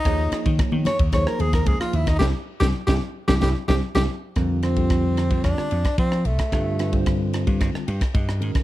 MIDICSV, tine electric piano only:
0, 0, Header, 1, 2, 480
1, 0, Start_track
1, 0, Tempo, 539084
1, 53, Time_signature, 4, 2, 24, 8
1, 7688, End_track
2, 0, Start_track
2, 0, Title_t, "Tine electric piano"
2, 0, Program_c, 0, 4
2, 45, Note_on_c, 0, 53, 76
2, 45, Note_on_c, 0, 58, 68
2, 46, Note_on_c, 0, 63, 69
2, 47, Note_on_c, 0, 68, 62
2, 47, Note_on_c, 0, 73, 78
2, 852, Note_off_c, 0, 53, 0
2, 852, Note_off_c, 0, 58, 0
2, 853, Note_off_c, 0, 63, 0
2, 853, Note_off_c, 0, 68, 0
2, 853, Note_off_c, 0, 73, 0
2, 1004, Note_on_c, 0, 58, 64
2, 1006, Note_on_c, 0, 53, 72
2, 1006, Note_on_c, 0, 63, 63
2, 1006, Note_on_c, 0, 68, 68
2, 1007, Note_on_c, 0, 72, 80
2, 1810, Note_off_c, 0, 58, 0
2, 1811, Note_off_c, 0, 53, 0
2, 1811, Note_off_c, 0, 68, 0
2, 1812, Note_off_c, 0, 63, 0
2, 1812, Note_off_c, 0, 72, 0
2, 1963, Note_on_c, 0, 60, 93
2, 1964, Note_on_c, 0, 67, 95
2, 1967, Note_on_c, 0, 64, 100
2, 2042, Note_off_c, 0, 60, 0
2, 2042, Note_off_c, 0, 67, 0
2, 2044, Note_off_c, 0, 64, 0
2, 2326, Note_on_c, 0, 64, 92
2, 2327, Note_on_c, 0, 60, 92
2, 2328, Note_on_c, 0, 67, 88
2, 2402, Note_off_c, 0, 64, 0
2, 2403, Note_off_c, 0, 60, 0
2, 2404, Note_off_c, 0, 67, 0
2, 2560, Note_on_c, 0, 67, 91
2, 2562, Note_on_c, 0, 60, 94
2, 2563, Note_on_c, 0, 64, 96
2, 2639, Note_off_c, 0, 67, 0
2, 2640, Note_off_c, 0, 60, 0
2, 2641, Note_off_c, 0, 64, 0
2, 2922, Note_on_c, 0, 60, 92
2, 2923, Note_on_c, 0, 67, 88
2, 2924, Note_on_c, 0, 64, 96
2, 3000, Note_off_c, 0, 60, 0
2, 3001, Note_off_c, 0, 64, 0
2, 3001, Note_off_c, 0, 67, 0
2, 3036, Note_on_c, 0, 64, 101
2, 3039, Note_on_c, 0, 60, 97
2, 3039, Note_on_c, 0, 67, 102
2, 3116, Note_off_c, 0, 64, 0
2, 3118, Note_off_c, 0, 60, 0
2, 3118, Note_off_c, 0, 67, 0
2, 3278, Note_on_c, 0, 60, 97
2, 3278, Note_on_c, 0, 67, 93
2, 3279, Note_on_c, 0, 64, 97
2, 3357, Note_off_c, 0, 67, 0
2, 3358, Note_off_c, 0, 60, 0
2, 3358, Note_off_c, 0, 64, 0
2, 3520, Note_on_c, 0, 67, 95
2, 3521, Note_on_c, 0, 60, 99
2, 3521, Note_on_c, 0, 64, 98
2, 3598, Note_off_c, 0, 67, 0
2, 3599, Note_off_c, 0, 60, 0
2, 3599, Note_off_c, 0, 64, 0
2, 3885, Note_on_c, 0, 55, 67
2, 3886, Note_on_c, 0, 50, 73
2, 3886, Note_on_c, 0, 60, 72
2, 3886, Note_on_c, 0, 70, 81
2, 3887, Note_on_c, 0, 65, 67
2, 4086, Note_off_c, 0, 50, 0
2, 4086, Note_off_c, 0, 55, 0
2, 4087, Note_off_c, 0, 60, 0
2, 4087, Note_off_c, 0, 65, 0
2, 4087, Note_off_c, 0, 70, 0
2, 4122, Note_on_c, 0, 50, 57
2, 4122, Note_on_c, 0, 55, 54
2, 4122, Note_on_c, 0, 72, 67
2, 4123, Note_on_c, 0, 60, 53
2, 4124, Note_on_c, 0, 65, 54
2, 4224, Note_off_c, 0, 50, 0
2, 4224, Note_off_c, 0, 55, 0
2, 4224, Note_off_c, 0, 72, 0
2, 4225, Note_off_c, 0, 60, 0
2, 4225, Note_off_c, 0, 65, 0
2, 4235, Note_on_c, 0, 50, 59
2, 4238, Note_on_c, 0, 65, 59
2, 4239, Note_on_c, 0, 55, 54
2, 4239, Note_on_c, 0, 67, 67
2, 4240, Note_on_c, 0, 60, 57
2, 5046, Note_off_c, 0, 50, 0
2, 5047, Note_off_c, 0, 65, 0
2, 5048, Note_off_c, 0, 55, 0
2, 5048, Note_off_c, 0, 60, 0
2, 5048, Note_off_c, 0, 67, 0
2, 5807, Note_on_c, 0, 50, 66
2, 5808, Note_on_c, 0, 60, 56
2, 5809, Note_on_c, 0, 65, 61
2, 5810, Note_on_c, 0, 55, 55
2, 5811, Note_on_c, 0, 69, 69
2, 6009, Note_off_c, 0, 50, 0
2, 6009, Note_off_c, 0, 60, 0
2, 6010, Note_off_c, 0, 55, 0
2, 6010, Note_off_c, 0, 65, 0
2, 6011, Note_off_c, 0, 69, 0
2, 6047, Note_on_c, 0, 55, 55
2, 6048, Note_on_c, 0, 50, 61
2, 6048, Note_on_c, 0, 60, 61
2, 6050, Note_on_c, 0, 65, 57
2, 6050, Note_on_c, 0, 71, 68
2, 6148, Note_off_c, 0, 55, 0
2, 6149, Note_off_c, 0, 50, 0
2, 6149, Note_off_c, 0, 60, 0
2, 6149, Note_off_c, 0, 71, 0
2, 6150, Note_off_c, 0, 65, 0
2, 6164, Note_on_c, 0, 55, 70
2, 6165, Note_on_c, 0, 50, 73
2, 6165, Note_on_c, 0, 65, 71
2, 6166, Note_on_c, 0, 60, 70
2, 6167, Note_on_c, 0, 72, 83
2, 6973, Note_off_c, 0, 50, 0
2, 6973, Note_off_c, 0, 55, 0
2, 6973, Note_off_c, 0, 65, 0
2, 6974, Note_off_c, 0, 60, 0
2, 6975, Note_off_c, 0, 72, 0
2, 7008, Note_on_c, 0, 79, 64
2, 7233, Note_off_c, 0, 79, 0
2, 7247, Note_on_c, 0, 75, 61
2, 7480, Note_on_c, 0, 51, 74
2, 7481, Note_on_c, 0, 61, 66
2, 7482, Note_on_c, 0, 56, 65
2, 7483, Note_on_c, 0, 66, 60
2, 7483, Note_on_c, 0, 70, 75
2, 7688, Note_off_c, 0, 51, 0
2, 7688, Note_off_c, 0, 56, 0
2, 7688, Note_off_c, 0, 61, 0
2, 7688, Note_off_c, 0, 66, 0
2, 7688, Note_off_c, 0, 70, 0
2, 7688, Note_off_c, 0, 75, 0
2, 7688, End_track
0, 0, End_of_file